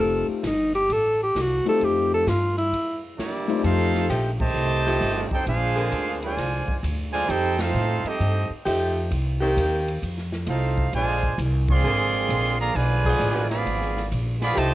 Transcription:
Already playing: F1 A3 C4 D#4 F4 G4
0.01 A4
0.28 C4, muted upright bass stroke
0.43 G1 D#4, kick, snare, hi-hat pedal, ride
0.75 G4, ride
0.90 A1 A4, kick, ride
1.23 G4
1.35 C2, kick, snare, hi-hat pedal, ride
1.41 F#4
1.66 A3 C4 D#4 F4 G4 A4, ride
1.80 F2, kick, ride
1.85 G4
2.14 A4
2.26 G2 F4, kick, snare, hi-hat pedal, ride
2.58 E4, ride
2.73 kick, ride
3.16 G3 A#3 D4 E4 G4 D5, kick, snare, hi-hat pedal, ride
3.48 A3 C4 D#4 F4 G4, ride
3.63 F2 A3 C4 D#4 F4 A4 C5 F5, kick, ride
3.79 snare
3.94 snare
4.09 A#1 F3 A3 D#4 G4, kick, hi-hat pedal, ride
4.40 C3 D#3 A3 G4 C5 D#5 A5, kick, crash
4.54 C2
4.86 F3 A3 D#4 G4, snare
5.01 G1, kick, hi-hat pedal, ride
5.31 C4 D#4 G4 A4 C5 G5, muted upright bass stroke, kick
5.45 A#1 G#3 D4 F4 G#4 C5 F5, kick, ride
5.76 D3 A#3 C4 G#4
5.92 D2, kick, hi-hat pedal, ride
6.21 D3 F3 G#3 F4 C5 D5 G#5, ride
6.37 C2, kick, snare, ride
6.67 muted upright bass stroke, kick
6.83 D2, kick, hi-hat pedal, ride
7.12 D3 F3 G#3 F4 C5 D5 G#5, ride
7.26 F2 C4 D#4 G4 A4 C5 G5, kick, ride
7.58 A3 C4 D#4 F4 A4 C5 F5, snare, ride
7.74 A2, hi-hat pedal
8.04 A3 C4 D#4 G4 A4 D#5, muted upright bass stroke, ride
8.20 G2, kick, ride
8.50 muted upright bass stroke
8.65 F2 F3 A3 D#4 G4, kick, hi-hat pedal, ride
9.10 C2, kick, ride
9.40 D#3 A#3 C4 G4
9.56 D#2, kick, hi-hat pedal, ride
9.88 ride
10.02 F2, kick, ride
10.18 snare
10.32 snare
10.46 C2 A3 C4 D#4 F4 A4 C5 F5, kick, hi-hat pedal, ride
10.78 kick
10.92 A#1 D3 F3 G#3 F4 C5 D5 G#5, kick, ride
11.23 kick
11.38 C2, kick, hi-hat pedal, ride
11.68 F3 G#3 C4 G#4 D5 F5 C6, kick, crash
11.84 G#1 D3 A#3 C4 G#4
12.29 A#1, kick, hi-hat pedal, ride
12.59 D3 F3 A#3 G#4 D5 F5 A#5
12.74 B1 D3 F3 G#3 F4 B4 D5 G#5, kick, ride
13.05 F3 B3 D4 G#4, kick
13.20 A1, kick, hi-hat pedal, ride
13.50 F3 G#3 B3 G#4 D5 F5 B5, snare, ride
13.65 G#1, kick, ride
13.82 snare
13.97 snare
14.11 A#1, kick, hi-hat pedal, ride
14.40 F3 G#3 B3 G#4 D5 F5 B5, snare, ride
14.56 C2 C3 D#3 F3 A3 D#4 G4 C5 D#5 A5, kick, ride

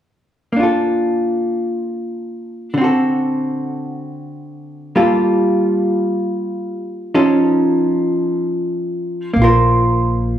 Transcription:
0.53 A#3 D4
0.60 F4 A4
2.74 D3 C4
2.81 F#4 A4
4.96 G3 A#3 F4 A4
7.15 F3 C#4 D#4 A4
9.34 A#1 A#3
9.42 F4 A#4 C5

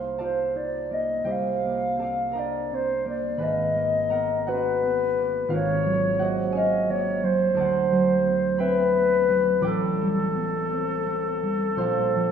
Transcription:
Already playing: C2 A#3 C4 D#4 C5 D5 F5 G5 A5 A#5 C6 D6
0.18 F4 A4 C5 D5 F5 A5
0.55 D#4 D5
0.91 A#3 D#5
1.24 C2 G4 C5 D#5 G5
1.30 F5
1.65 A#3
1.97 C4 A4 A5
2.01 D5 F5
2.31 D4 A#4 D#5 A#5
2.37 D5 G5
2.70 C4 C5
3.05 A#3 D5
3.37 G#1 B4 G#5 B5
3.42 D#5 F5
3.76 A#3
4.10 B3 A#4 D#5 F#5 A#5
4.47 C#4 F#4 B4 D#5 F#5
4.83 B3
5.18 A#3
5.48 G#1 F4 F5
5.52 A#4 C#5
5.86 F#3
6.18 A#3 F#4 C5 F#5
6.22 D#5
6.50 C#4 G#4 G#5
6.55 C#5 D#5 F5
6.89 A#3 C#5
7.23 F#3 C5
7.54 D2 A4 D5 A5
7.60 F#5
7.92 F#3
8.26 B3
8.58 C4 B4 E5 G5 B5
8.95 B3
9.29 F#3
9.61 A1 D5 G5 B5 D6
9.65 A4
9.99 G3
10.34 B3
10.72 C4
11.06 B3
11.43 G3
11.76 A#1 C5 F5 C6
11.81 A5
12.16 F3

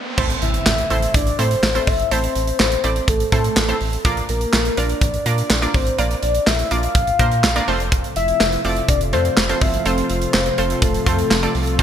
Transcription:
Already playing: riser
0.18 A1 A3 C4 E4 A4 C5, kick, crash, impact
0.30 closed hi-hat
0.42 A1 E5, closed hi-hat
0.54 closed hi-hat
0.66 A1, snare, clap
0.78 closed hi-hat
0.90 A1 A3 C4 E4 A4 C5, closed hi-hat
1.02 closed hi-hat
1.14 A1 D5, kick, closed hi-hat
1.27 closed hi-hat
1.39 A2 A3 C4 E4 A4 C5, closed hi-hat
1.51 closed hi-hat
1.63 A1, snare, clap
1.75 A3 C4 E4 A4 C5, closed hi-hat
1.87 G1 E5, kick, open hi-hat
2.00 closed hi-hat
2.11 A1 A3 C4 E4 A4 C5, closed hi-hat
2.24 closed hi-hat
2.35 A1, closed hi-hat
2.47 closed hi-hat
2.60 A1 C5, snare, clap
2.72 closed hi-hat
2.84 A1 A3 C4 E4 A4 D5, closed hi-hat
2.96 closed hi-hat
3.08 A1 A4, kick, closed hi-hat
3.20 closed hi-hat
3.32 A2 A3 C4 E4 A4 C5, kick, closed hi-hat
3.44 closed hi-hat
3.57 A1, snare, clap
3.69 A3 C4 E4 A4 C5, closed hi-hat
3.81 A1, open hi-hat
3.93 closed hi-hat
4.05 A#1 A#3 D4 F4 A#4 D5, kick, closed hi-hat
4.17 closed hi-hat
4.29 A#1 A#4, closed hi-hat
4.41 closed hi-hat
4.53 A#1, snare, clap
4.65 closed hi-hat
4.77 A#1 A#3 D4 F4 A#4 D5, closed hi-hat
4.89 closed hi-hat
5.01 A#1, kick, closed hi-hat
5.14 closed hi-hat
5.26 A#2 A#3 D4 F4 A#4 D5, closed hi-hat
5.38 closed hi-hat
5.50 A#1, snare, clap
5.62 A#3 D4 F4 A#4 D5, closed hi-hat
5.74 A1 C5, kick, open hi-hat
5.87 closed hi-hat
5.98 A#1 A#3 D4 F4 A#4 D5, closed hi-hat
6.11 closed hi-hat
6.23 A#1 D5, closed hi-hat
6.35 closed hi-hat
6.47 A#1 E5, snare, clap
6.59 closed hi-hat
6.71 A#1 A#3 D4 F4 A#4 D5 F5, closed hi-hat
6.83 closed hi-hat
6.95 A#1, kick, closed hi-hat
7.07 closed hi-hat
7.19 A#2 A#3 D4 F4 A#4 C5, kick, closed hi-hat
7.32 closed hi-hat
7.44 A#1, snare, clap
7.56 A#3 D4 F4 A#4 D5, closed hi-hat
7.68 F1 A3 C4 F4 A4 C5, open hi-hat
7.80 closed hi-hat
7.92 C3 F3 A3 F4, kick, closed hi-hat
8.04 closed hi-hat
8.16 F1 E5, closed hi-hat
8.28 closed hi-hat
8.40 F1, snare, clap
8.52 closed hi-hat
8.65 F1 A3 C4 F4 A4 D5 E5, open hi-hat
8.77 closed hi-hat
8.89 F1 D5, kick, closed hi-hat
9.01 closed hi-hat
9.13 F2 A3 C4 F4 A4 C5, closed hi-hat
9.25 closed hi-hat
9.37 F1, snare, clap
9.49 A3 C4 F4 A4 C5, closed hi-hat
9.61 G1 E5, kick, open hi-hat
9.74 closed hi-hat
9.86 F1 A3 C4 F4 A4 C5, closed hi-hat
9.98 closed hi-hat
10.10 F1, closed hi-hat
10.22 closed hi-hat
10.34 F1 C5, snare, clap
10.46 closed hi-hat
10.58 F1 A3 C4 F4 A4 C5, closed hi-hat
10.70 closed hi-hat
10.82 F1 A4, kick, closed hi-hat
10.94 closed hi-hat
11.06 F2 A3 C4 F4 A4 C5, kick, closed hi-hat
11.19 closed hi-hat
11.31 F1, snare, clap
11.43 A3 C4 F4 A4 D5, closed hi-hat
11.55 C2, open hi-hat
11.67 closed hi-hat
11.79 D2 C4 D4 F4 A4 C5, kick, closed hi-hat

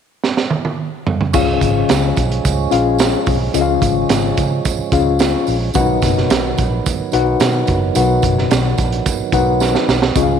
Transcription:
0.24 snare
0.37 snare
0.51 high tom
0.65 high tom
1.07 floor tom
1.21 floor tom
1.33 C#2 C#3 F3 G#3 C#4 F4 G#4 F5, kick, crash, tambourine
1.61 G#1, kick, closed hi-hat, tambourine
1.89 C#2, snare, closed hi-hat, tambourine
2.16 B1, kick, closed hi-hat, tambourine
2.32 closed hi-hat
2.45 C#2, kick, closed hi-hat, tambourine
2.71 A#1 C#4 F4 G#4 F5, closed hi-hat, tambourine
2.98 snare, closed hi-hat, tambourine
3.26 B1, kick, open hi-hat, tambourine
3.54 C#2 C#3 C#4 F4 G#4 D#5, closed hi-hat, tambourine
3.61 F5
3.82 G#1, kick, closed hi-hat, tambourine
4.09 G#1, snare, closed hi-hat, tambourine
4.37 C#3, kick, closed hi-hat, tambourine
4.65 kick, closed hi-hat, tambourine
4.79 muted fingered electric bass stroke
4.92 C#2 C#4 F4 G#4 F5, kick, closed hi-hat, tambourine
5.19 snare, closed hi-hat, tambourine
5.47 A#1, open hi-hat, tambourine
5.74 B1 B2 D#3 F#3 C#4 F#4 B4 F#5, kick, closed hi-hat, tambourine
5.78 B3 D#4
6.02 F#1, kick, snare, closed hi-hat, tambourine
6.18 snare
6.30 B1, snare, closed hi-hat, tambourine
6.58 A#1, kick, closed hi-hat, tambourine
6.86 kick, closed hi-hat, tambourine
7.00 muted fingered electric bass stroke
7.12 B1 D#4 F#4 B4 F#5, closed hi-hat, tambourine
7.40 B2, snare, closed hi-hat, tambourine
7.67 F#1, kick, closed hi-hat, tambourine
7.95 B1 B2 D#4 F#4 B4 F#5, closed hi-hat, tambourine
8.22 F#1, kick, closed hi-hat, tambourine
8.39 snare
8.51 B1, snare, closed hi-hat, tambourine
8.78 A#1, kick, closed hi-hat, tambourine
8.92 closed hi-hat
9.06 kick, closed hi-hat, tambourine
9.20 muted fingered electric bass stroke
9.32 B1 D#4 F#4 B4 F#5, kick, closed hi-hat, tambourine
9.60 snare, tambourine
9.75 snare
9.88 B1, snare, tambourine
10.02 snare
10.16 C#2 C#3 F3 G#3 C#4 F4 G#4 D#5, kick, closed hi-hat, tambourine
10.23 F5

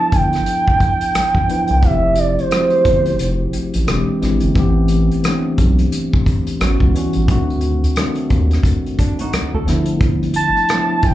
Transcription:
Already playing: F3 B3 D4 E4 A4 A5
0.12 G1 G5, kick, closed hi-hat
0.33 cross-stick, closed hi-hat
0.46 closed hi-hat
0.68 kick
0.80 kick, closed hi-hat
1.01 closed hi-hat
1.15 A1, cross-stick, closed hi-hat
1.35 A1, kick
1.48 F3 B3 D4 E4 B4, closed hi-hat
1.68 C2, closed hi-hat
1.82 F1 F3 A3 C4 E4 G4 E5, kick, closed hi-hat
2.15 D5, closed hi-hat
2.39 C5, closed hi-hat
2.50 F3 A3 C4 E4 F#4, cross-stick, closed hi-hat
2.60 G4
2.70 closed hi-hat
2.85 G1, kick, closed hi-hat
3.06 closed hi-hat
3.19 F1, closed hi-hat
3.53 A1, closed hi-hat
3.74 A1, closed hi-hat
3.87 E1 E3 G#3 C4 D4 G4, cross-stick, closed hi-hat
4.21 G#1 E3 G#3 C4 D4 E4, cross-stick, closed hi-hat
4.40 G1, closed hi-hat
4.55 A1 E3 A3 B3 C4 G4, kick, closed hi-hat
4.88 closed hi-hat
5.11 closed hi-hat
5.23 E3 A3 B3 C4 D4, cross-stick, closed hi-hat
5.58 B1, kick, closed hi-hat
5.79 closed hi-hat
5.92 closed hi-hat
6.13 kick
6.26 kick, closed hi-hat
6.47 closed hi-hat
6.60 A1 E3 G3 B3 C#4 F#4, cross-stick, closed hi-hat
6.80 C#2, kick
6.94 E3 G3 B3 C#4 F#4, closed hi-hat
7.13 A1, closed hi-hat
7.28 D2 D#3 A3 C4 D4 F#4, kick, closed hi-hat
7.50 closed hi-hat
7.61 closed hi-hat
7.84 closed hi-hat
7.96 D#3 A3 C4 D4 A4, cross-stick, closed hi-hat
8.15 closed hi-hat
8.30 D#2, kick, closed hi-hat
8.51 cross-stick, closed hi-hat
8.63 kick, closed hi-hat
8.86 closed hi-hat
8.99 D4, kick, closed hi-hat
9.19 D#4 F#4, closed hi-hat
9.33 D2, cross-stick, closed hi-hat
9.54 D2 F#4 A4
9.66 G1 F3 A3 B3 D4 E4, cross-stick, closed hi-hat
9.86 closed hi-hat
10.01 kick, closed hi-hat
10.23 closed hi-hat
10.34 A5, closed hi-hat
10.57 closed hi-hat
10.69 F3 A3 B3 D4 E4, cross-stick, closed hi-hat
11.03 G1 G5, kick, closed hi-hat

